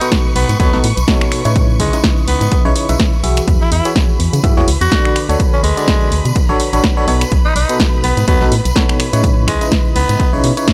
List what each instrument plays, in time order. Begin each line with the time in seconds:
Already playing: string section B4 C#6
0.01 fm electric piano B2 D#4 F#4 A4 B4, closed hi-hat, tambourine
0.11 kick, snare, closed hi-hat, tambourine
0.25 tambourine
0.36 fm bass B1, tenor saxophone B3, open hi-hat
0.49 fm bass G#2, closed hi-hat, tambourine
0.59 fm bass D#2, fm electric piano B2 D#4 F#4 A4 C#5, tenor saxophone B3, kick, closed hi-hat, tambourine
0.73 fm bass B1, fm electric piano B2 D#4 F#4 A4 B4, snare, tambourine
0.84 fm bass A2, open hi-hat
0.97 fm bass B1, closed hi-hat, tambourine
1.08 fm electric piano B2 D#4 F#4 A4 C#5, kick, snare, closed hi-hat, tambourine
1.21 finger snap, tambourine
1.32 finger snap, open hi-hat
1.45 fm bass A2, fm electric piano C#3 D#4 E4 B4 C#5, closed hi-hat, tambourine
1.56 kick, closed hi-hat, tambourine
1.70 tambourine
1.80 fm bass C#2, tenor saxophone G#3, kick, open hi-hat
1.93 fm electric piano C#3 D#4 E4 B4 D#5, closed hi-hat, tambourine
2.04 kick, snare, closed hi-hat
2.17 tambourine
2.28 fm bass C#2, tenor saxophone B3, open hi-hat
2.41 fm bass G#2, closed hi-hat, tambourine
2.51 kick, closed hi-hat, tambourine
2.65 fm bass B1, fm electric piano C#3 D#4 E4 B4 C#5, tambourine
2.76 fm electric piano C#3 D#4 E4 C#5, open hi-hat
2.89 fm bass B1, fm electric piano C#3 D#4 E4 B4 E5, closed hi-hat, tambourine
2.99 kick, snare, closed hi-hat, tambourine
3.13 tambourine
3.24 fm bass B1, fm electric piano E3 E4 F#4 G#4 E5, open hi-hat
3.37 finger snap, closed hi-hat, tambourine
3.48 fm bass E2, string section B4 B5, kick, closed hi-hat, tambourine
3.61 tenor saxophone E4, tambourine
3.72 fm bass E2, tenor saxophone E4, open hi-hat
3.85 fm electric piano E3 E4 F#4 G#4 C#5, closed hi-hat, tambourine
3.96 kick, snare, closed hi-hat, tambourine
4.09 tambourine
4.20 fm bass E2, open hi-hat
4.33 fm bass C#3, closed hi-hat, tambourine
4.43 fm bass G#2, fm electric piano E3 E4 F#4 G#4 E5, kick, closed hi-hat, tambourine
4.57 fm bass E2, fm electric piano E3 E4 F#4 G#4 C#5, snare, tambourine
4.67 fm bass C#2, open hi-hat
4.81 fm bass E2, tenor saxophone F#4, closed hi-hat, tambourine
4.91 fm electric piano D3 D4 F#4 A4 D5, kick, snare, closed hi-hat, tambourine
5.05 finger snap, tambourine
5.16 finger snap, open hi-hat
5.29 fm bass D2, fm electric piano D3 D4 F#4 A4 C#5, closed hi-hat, tambourine
5.40 kick, closed hi-hat, tambourine
5.53 tenor saxophone C#4, tambourine
5.63 fm bass D2, tenor saxophone G#3, open hi-hat
5.77 fm electric piano D3 D4 F#4 A4 D5, closed hi-hat, tambourine
5.87 kick, snare, closed hi-hat, tambourine
6.01 tambourine
6.12 fm bass D2, open hi-hat
6.25 fm bass B2, closed hi-hat, tambourine
6.35 kick, closed hi-hat, tambourine
6.49 fm bass A1, fm electric piano D3 D4 F#4 A4 C#5, tambourine
6.60 open hi-hat
6.73 fm bass A1, fm electric piano D3 D4 F#4 A4 C#5, closed hi-hat, tambourine
6.84 kick, snare, closed hi-hat
6.97 fm electric piano D4 F#4 A4 C#5, tambourine
7.07 fm bass B1, fm electric piano B2 D#4 F#4 A4 C#5, open hi-hat
7.21 finger snap, closed hi-hat, tambourine
7.30 fm bass B1, kick, closed hi-hat, tambourine
7.45 tenor saxophone D#4, tambourine
7.56 fm bass B1, tenor saxophone D#4, open hi-hat
7.69 fm electric piano B2 D#4 F#4 A4 B4, closed hi-hat, tambourine
7.80 kick, snare, closed hi-hat, tambourine
7.93 tambourine
8.04 fm bass B1, tenor saxophone B3, open hi-hat
8.17 fm bass G#2, closed hi-hat, tambourine
8.28 fm bass D#2, fm electric piano B2 D#4 F#4 A4 C#5, tenor saxophone B3, kick, closed hi-hat
8.41 fm bass B1, fm electric piano B2 D#4 F#4 A4 B4, snare, tambourine
8.52 fm bass A2, open hi-hat
8.65 fm bass B1, closed hi-hat, tambourine
8.76 fm electric piano B2 D#4 F#4 A4 C#5, kick, snare, closed hi-hat, tambourine
8.89 finger snap, tambourine
9.00 finger snap, open hi-hat
9.13 fm bass A2, fm electric piano C#3 D#4 E4 B4 C#5, closed hi-hat, tambourine
9.23 kick, closed hi-hat, tambourine
9.37 tambourine
9.48 fm bass C#2, tenor saxophone G#3, finger snap, kick, open hi-hat
9.61 fm electric piano C#3 D#4 E4 B4 D#5, closed hi-hat, tambourine
9.72 kick, snare, closed hi-hat, tambourine
9.85 tambourine
9.96 fm bass C#2, tenor saxophone B3, open hi-hat
10.09 fm bass G#2, closed hi-hat, tambourine
10.20 kick, closed hi-hat, tambourine
10.33 fm bass B1, fm electric piano C#3 D#4 E4 B4 C#5, tambourine
10.44 fm bass B2, open hi-hat
10.57 fm electric piano C#3 D#4 E4 B4 C#5, closed hi-hat, tambourine
10.68 kick, snare, closed hi-hat